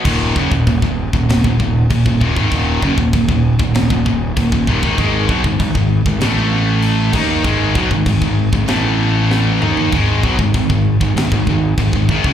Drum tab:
CC |x---x---x---x---|x---x---x---x---|x---x---x---x-x-|x---x---x-------|
SD |--------o-------|--------o-------|--------o-------|--------o---o---|
T2 |----------------|----------------|----------------|--------------o-|
FT |----------------|----------------|----------------|---------------o|
BD |o-oooo-o-oo-oooo|o-oooo-o-oo-oooo|o-oooo-o------o-|o-oooo-o--------|

CC |x---x---x---x---|
SD |--------o-------|
T2 |----------------|
FT |----------------|
BD |o-oooo-o-oo-oooo|